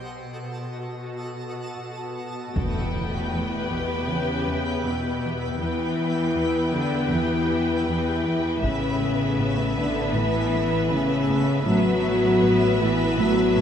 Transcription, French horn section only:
1.80 B3
2.57 A3
3.70 B3
4.08 C#4
4.84 B3
5.60 E4
6.74 D4
7.13 E4
7.88 E4
8.65 C#4
9.77 D4
10.15 E4
10.90 C#4
11.67 F#4
12.81 E4
13.19 F#4

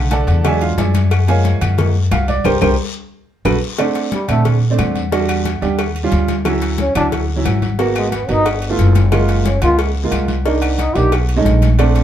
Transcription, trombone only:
4.13 G3
4.30 A3
6.81 C#4
6.97 D4
7.97 G#3
8.14 B3
8.30 D#4
9.31 A#3
9.47 C#4
9.63 F4
10.63 C4
10.80 D#4
10.96 G4
11.96 D4

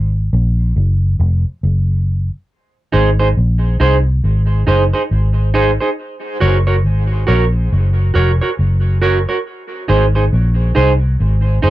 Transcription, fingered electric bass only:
Already playing: G#1
0.33 A#1
0.76 F#1
1.20 F1
1.63 F#1
2.94 G#1
3.37 A#1
3.81 C2
4.24 G#1
4.68 F#1
5.11 G#1
6.42 F#1
6.85 G#1
7.29 A#1
7.72 F#1
8.16 F1
8.59 F#1
9.89 G#1
10.33 A#1
10.77 C2
11.20 G#1
11.64 F#1

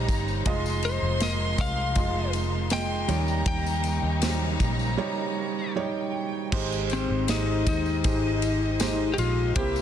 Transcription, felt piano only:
Already playing: G3 D#4 C5 C#5 D#5
0.46 G#3 F4 D#5
1.21 G#3 F4 A#4
1.96 G#3 F4 D#5
2.71 G#3 F4 D#5
3.08 D#3 G3 D#4 C#5
4.22 F#3 D#4 C5
4.29 G3
4.97 G3 D#4 C#5
5.76 G3 D#4 C#5
6.53 G#2 G#3 D#4 G4 C5
7.29 G#3 D#4 G4 D#5
8.05 G#3 D#4 G4 C5
8.80 G#3 D#4 G4 C5
9.56 C3 A#3 E4 G4 C5

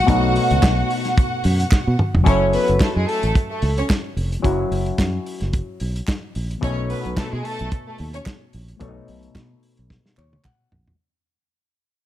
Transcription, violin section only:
Already playing: F#4 F#5
2.26 C#4 C#5
2.53 B3 B4
2.80 A3 A4
2.96 G#3 G#4
3.07 A3 A4
3.50 A3 A4
3.78 C#4 C#5
6.63 C#4 C#5
6.89 B3 B4
7.17 A3 A4
7.32 G#3 G#4
7.45 A3 A4
7.86 A3 A4
8.14 C#4 C#5

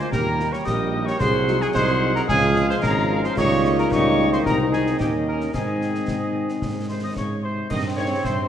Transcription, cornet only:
0.00 C5
0.13 A#4
0.52 C#5
0.66 D#5
1.07 C#5
1.19 C5
1.61 G#4
1.74 C5
2.15 A#4
2.28 G#4
2.70 C5
2.82 A#4
3.26 C5
3.38 C#5
3.79 A#4
3.91 C#5
4.33 C5
4.45 A#4
4.72 G#4
5.00 G4
5.27 A#4
5.54 G#4
6.89 C5
7.03 D#5
7.16 C#5
7.44 C5
7.70 D#5
7.96 C#5
8.24 C5

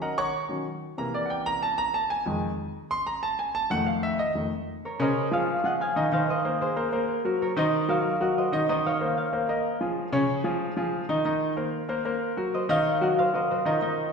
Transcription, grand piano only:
Already playing: D#3 F#3 C#4
0.02 A#4 D#5 F#5 A#5
0.18 C#5 F#5 A#5 C#6
0.49 D#3 F#3 C#4
0.98 C3 E3 A#3 A#5
1.14 D5
1.26 F#5
1.30 G5
1.46 A#5
1.63 A5
1.78 A#5
1.94 A5
2.10 G#5
2.26 F2 D#3 G#3
2.91 C6
3.07 A#5
3.23 A5
3.39 G#5
3.55 A5
3.70 F2 D#3 A3 F#5
3.87 F5
4.03 E5
4.19 D#5
4.35 F2 D#3 A3
4.99 C#3 C#4 A#4
5.31 F3 F4 G#4
5.64 F3 F4 G#4
5.96 D#3 D#4 D#5
6.12 D#3 D#4 D#5
6.45 A#3 A#4 C5
6.76 A#3 A#4 C5
6.93 A#3 A#4 C5
7.25 F#3 F#4 A#4
7.56 D#3 D#4 D#5
7.88 F#3 F#4 A#4
8.20 F#3 F#4 A#4
8.52 D#3 D#4 D#5
8.69 D#3 D#4 D#5
9.01 A#3 A#4 C5
9.33 A#3 A#4 C5
9.49 A#3 A#4 D#5
9.81 F3 F4 G#4
10.12 C#3 C#4 C#5
10.44 F3 F4 G#4
10.77 F3 F4 G#4
11.09 D#3 D#4 D#5
11.25 D#3 D#4 D#5
11.57 A#3 A#4 C5
11.89 A#3 A#4 C5
12.05 A#3 A#4 C5
12.37 F#3 F#4 A#4
12.69 D#3 D#4 D#5
13.01 F#3 F#4 A#4
13.34 F#3 F#4 A#4
13.65 D#3 D#4 D#5
13.82 D#3 D#4 D#5

